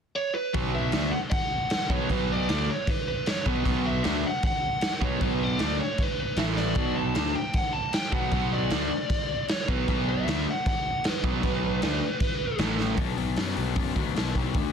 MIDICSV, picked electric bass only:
0, 0, Header, 1, 2, 480
1, 0, Start_track
1, 0, Key_signature, 2, "minor"
1, 0, Tempo, 389105
1, 674, Time_signature, 4, 2, 24, 8
1, 18161, End_track
2, 0, Start_track
2, 0, Title_t, "Picked electric bass"
2, 0, Program_c, 0, 34
2, 676, Note_on_c, 0, 35, 97
2, 1122, Note_off_c, 0, 35, 0
2, 1156, Note_on_c, 0, 38, 93
2, 1379, Note_off_c, 0, 38, 0
2, 2337, Note_on_c, 0, 35, 87
2, 2568, Note_off_c, 0, 35, 0
2, 2588, Note_on_c, 0, 35, 97
2, 3038, Note_off_c, 0, 35, 0
2, 3083, Note_on_c, 0, 38, 93
2, 3302, Note_off_c, 0, 38, 0
2, 4268, Note_on_c, 0, 35, 92
2, 4494, Note_off_c, 0, 35, 0
2, 4504, Note_on_c, 0, 35, 100
2, 4955, Note_off_c, 0, 35, 0
2, 5002, Note_on_c, 0, 38, 101
2, 5221, Note_off_c, 0, 38, 0
2, 6182, Note_on_c, 0, 35, 91
2, 6410, Note_off_c, 0, 35, 0
2, 6430, Note_on_c, 0, 35, 95
2, 6877, Note_off_c, 0, 35, 0
2, 6906, Note_on_c, 0, 38, 98
2, 7132, Note_off_c, 0, 38, 0
2, 7858, Note_on_c, 0, 33, 95
2, 8310, Note_off_c, 0, 33, 0
2, 8334, Note_on_c, 0, 35, 96
2, 8788, Note_off_c, 0, 35, 0
2, 8832, Note_on_c, 0, 38, 91
2, 9054, Note_off_c, 0, 38, 0
2, 10018, Note_on_c, 0, 35, 99
2, 10246, Note_off_c, 0, 35, 0
2, 10263, Note_on_c, 0, 35, 99
2, 10711, Note_off_c, 0, 35, 0
2, 10749, Note_on_c, 0, 38, 86
2, 10971, Note_off_c, 0, 38, 0
2, 11946, Note_on_c, 0, 35, 101
2, 12169, Note_off_c, 0, 35, 0
2, 12190, Note_on_c, 0, 35, 91
2, 12634, Note_off_c, 0, 35, 0
2, 12664, Note_on_c, 0, 38, 94
2, 12888, Note_off_c, 0, 38, 0
2, 13858, Note_on_c, 0, 35, 97
2, 14084, Note_off_c, 0, 35, 0
2, 14098, Note_on_c, 0, 35, 99
2, 14547, Note_off_c, 0, 35, 0
2, 14582, Note_on_c, 0, 38, 91
2, 14806, Note_off_c, 0, 38, 0
2, 15532, Note_on_c, 0, 33, 94
2, 15984, Note_off_c, 0, 33, 0
2, 16002, Note_on_c, 0, 35, 100
2, 16226, Note_off_c, 0, 35, 0
2, 16241, Note_on_c, 0, 35, 95
2, 16466, Note_off_c, 0, 35, 0
2, 16487, Note_on_c, 0, 42, 82
2, 16710, Note_off_c, 0, 42, 0
2, 16745, Note_on_c, 0, 35, 90
2, 16960, Note_off_c, 0, 35, 0
2, 16972, Note_on_c, 0, 42, 86
2, 17193, Note_off_c, 0, 42, 0
2, 17214, Note_on_c, 0, 38, 91
2, 17434, Note_off_c, 0, 38, 0
2, 17456, Note_on_c, 0, 35, 89
2, 17675, Note_off_c, 0, 35, 0
2, 17703, Note_on_c, 0, 35, 85
2, 17919, Note_off_c, 0, 35, 0
2, 17946, Note_on_c, 0, 38, 93
2, 18161, Note_off_c, 0, 38, 0
2, 18161, End_track
0, 0, End_of_file